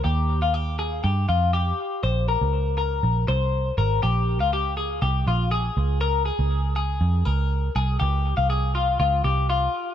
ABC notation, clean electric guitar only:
X:1
M:4/4
L:1/16
Q:1/4=121
K:Dblyd
V:1 name="Clean electric guitar"
G3 F G2 A2 G2 F2 G4 | c2 B4 B4 c4 B2 | G3 F G2 A2 G2 F2 A4 | B2 A4 A4 B4 A2 |
G3 F A2 F2 F2 G2 F4 |]